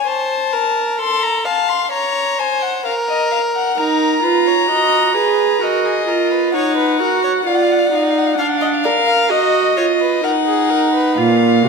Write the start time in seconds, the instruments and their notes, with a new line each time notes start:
0.06 violin C5 A5
0.53 violin A#4
0.99 violin A4 C6
1.23 violin A#5
1.45 violin F5 A5
1.69 violin C6
1.91 violin C#5 A#5
2.39 violin C5 G#5
2.62 violin F#5
2.85 violin A#4 F5
3.08 violin D#5
3.32 violin F5
3.55 violin F#5
3.77 viola D#4, violin A#4 A#5
4.23 viola F4, violin B4
4.47 violin C#5
4.68 viola F#4, violin D#5
5.14 viola G#4, violin B4
5.61 viola F#4, violin A#4 D#5
5.85 violin G#4
6.07 viola F4, violin A#4
6.31 violin B4
6.53 viola D#4, violin C#5 F#5
6.77 violin B4
7.00 viola F#4, violin A#4
7.24 violin C#5
7.45 viola F4, violin D5 F5
7.54 violin F#5
7.63 violin F5
7.72 violin F#5
7.78 violin F5
7.86 violin F#5
7.92 viola D#4, violin F5
8.03 violin F#5
8.10 violin F5
8.18 violin F#5
8.27 violin F5
8.33 violin F#5
8.38 viola D4, violin F5
8.49 violin F#5
8.57 violin D#5 F5
8.65 violin F#5
8.74 violin F5
8.84 viola A#4, violin D5
9.07 violin F5
9.30 viola F#4, violin D#5
9.77 viola F4, violin C#5
10.00 violin B4
10.23 viola D#4, violin A#4 F#5
10.47 violin G#4
10.70 violin A#4
10.93 violin B4
11.17 cello A#2, viola F4, violin F5
11.63 cello C3, viola F#4